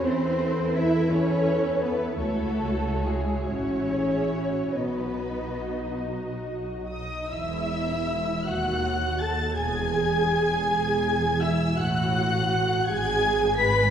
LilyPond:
<<
  \new Staff \with { instrumentName = "Violin section" } { \time 6/8 \key e \major \tempo 4. = 54 b'2. | cis''4. cis''4. | dis''2~ dis''8 dis'''8 | e'''4. fis'''4 a'''8 |
gis'''2~ gis'''8 e'''8 | fis'''4. gis'''4 b'''8 | }
  \new Staff \with { instrumentName = "Violin section" } { \time 6/8 \key e \major c''4 e''8 cis''4 b'8 | a'4 gis'8 cis''4. | b'4. r4 dis''8 | e''4. fis''4 a''8 |
gis''2~ gis''8 e''8 | fis''4. gis''4 b''8 | }
  \new Staff \with { instrumentName = "Viola section" } { \time 6/8 \key e \major << { a'2. | e'4. fis'8 gis'8 fis'8 | fis'2~ fis'8 dis'8 | e'4. fis'4 a'8 |
gis'2~ gis'8 e'8 | fis'4. gis'4 b'8 | } \\ { e'4. e'4. | fis'4. e'4. | dis'2~ dis'8 r8 | r2. |
r2. | r2. | } >> }
  \new Staff \with { instrumentName = "Cello section" } { \clef bass \time 6/8 \key e \major c'4 e'8 cis'4 b8 | a4 gis8 cis'4. | b4. r4. | e,4. dis,4. |
e,4. e,4. | a,4. gis,4. | }
  \new Staff \with { instrumentName = "Double bass section" } { \clef bass \time 6/8 \key e \major e,4. e,4. | cis,4. a,,4. | b,,2~ b,,8 r8 | e,,4. dis,4. |
e,,4. e,,4. | a,,4. gis,,4. | }
>>